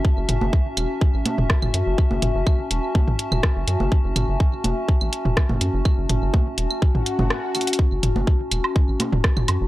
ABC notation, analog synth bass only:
X:1
M:4/4
L:1/16
Q:1/4=124
K:F#m
V:1 name="Analog synth bass" clef=bass
z F,,, F,,, F,,, z2 E,,, z2 A,,, z E,,, z F,,, F,, F,,, | z F,,, F,,, F,,, z2 E,,, z2 A,,, z E,,, z F,,, F,, F,,, | z F,,, F,,, F,,, z2 E,,, z2 A,,, z E,,, z F,,, F,, F,,, | z F,,, F,,, F,,, z2 E,,, z2 A,,, z F,,, z4 |
z F,,, F,,, F,,, z2 E,,, z2 A,,, z E,,, z F,,, F,, F,,, |]